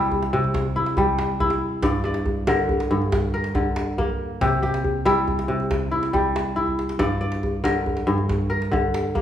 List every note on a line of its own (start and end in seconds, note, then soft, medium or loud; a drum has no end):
0.00 0.32 C3 medium
0.00 0.96 G3 medium
0.00 0.76 A#3 medium
0.00 0.75 E4 medium
0.00 0.88 G4 medium
0.12 djembe bass medium
0.23 djembe slap medium
0.33 1.88 C3 medium
0.44 djembe tone medium
0.54 djembe slap medium
0.54 djembe bass medium
0.65 djembe slap soft
0.76 1.40 E4 medium
0.86 djembe slap medium
0.97 1.88 G3 medium
0.97 djembe tone medium
0.97 djembe bass medium
1.08 djembe slap soft
1.18 djembe slap medium
1.40 2.97 E4 medium
1.40 djembe bass medium
1.50 djembe slap medium
1.50 djembe tone soft
1.83 2.89 G2 medium
1.83 2.05 D5 medium
1.83 djembe slap medium
1.83 djembe bass medium
2.04 3.16 D5 medium
2.04 djembe tone medium
2.14 djembe slap medium
2.26 djembe bass medium
2.37 djembe slap soft
2.47 3.54 D3 medium
2.47 3.33 A#4 medium
2.47 djembe slap medium
2.47 djembe tone medium
2.69 djembe bass medium
2.80 djembe slap medium
2.91 4.46 G2 medium
3.02 djembe tone medium
3.12 djembe slap medium
3.12 djembe bass medium
3.23 djembe slap soft
3.34 4.61 A#4 medium
3.44 djembe slap soft
3.55 4.46 D3 medium
3.55 djembe tone medium
3.55 djembe bass medium
3.65 djembe slap soft
3.76 djembe slap medium
3.98 5.91 A#3 medium
3.98 djembe bass medium
4.09 djembe tone soft
4.41 5.47 C3 medium
4.41 4.62 G4 medium
4.41 djembe slap medium
4.41 djembe bass medium
4.52 djembe slap soft
4.62 6.04 G4 medium
4.62 djembe slap soft
4.62 djembe tone medium
4.74 djembe slap medium
4.84 djembe bass medium
5.05 6.12 G3 medium
5.05 5.91 E4 medium
5.05 djembe slap medium
5.05 djembe tone medium
5.28 djembe slap soft
5.28 djembe bass medium
5.39 djembe slap medium
5.48 7.04 C3 medium
5.60 djembe tone medium
5.71 djembe slap medium
5.71 djembe bass medium
5.82 djembe slap soft
5.91 6.56 E4 medium
5.91 djembe slap soft
6.03 djembe slap medium
6.13 7.04 G3 medium
6.13 djembe tone medium
6.13 djembe bass medium
6.25 djembe slap soft
6.36 djembe slap medium
6.46 djembe slap soft
6.56 8.13 E4 medium
6.56 djembe bass soft
6.68 djembe bass soft
6.79 djembe slap soft
6.89 djembe slap medium
6.99 8.06 G2 medium
6.99 7.20 D5 medium
6.99 djembe slap medium
6.99 djembe bass medium
7.21 8.32 D5 medium
7.32 djembe slap medium
7.43 djembe bass medium
7.54 djembe slap soft
7.64 8.70 D3 medium
7.64 8.49 A#4 medium
7.64 djembe slap medium
7.64 djembe tone medium
7.86 djembe bass medium
7.97 djembe slap medium
8.07 9.22 G2 medium
8.18 djembe tone soft
8.29 djembe slap medium
8.29 djembe bass medium
8.40 djembe slap soft
8.50 9.22 A#4 medium
8.62 djembe slap medium
8.72 9.22 D3 medium
8.72 djembe tone medium
8.72 djembe bass medium
8.84 djembe slap soft
8.94 djembe slap medium
9.15 9.22 A#3 medium
9.15 djembe bass medium